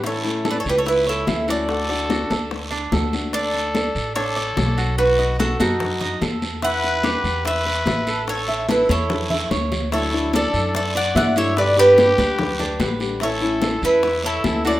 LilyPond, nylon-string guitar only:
\new Staff \with { instrumentName = "Nylon-string guitar" } { \time 4/4 \key d \major \tempo 4 = 146 <e a cis' e'>8 <a cis' e'>4. r4 <e a cis' e'>8 <a cis' e'>8 | <d a d' fis'>8 <a d' fis'>4. r4 <d a d' fis'>8 <a d' fis'>8 | r1 | r1 |
r1 | r1 | <d fis a d' e'>8 <fis a d' e'>4. r4 <fis a d' e'>8 <fis a d' e'>8 | <b, d g b g'>8 <d g b g'>4. r4 <d g b g'>8 <d g b g'>8 |
<e a cis' e'>8 <a cis' e'>4. r4 <e a cis' e'>8 <a cis' e'>8 | }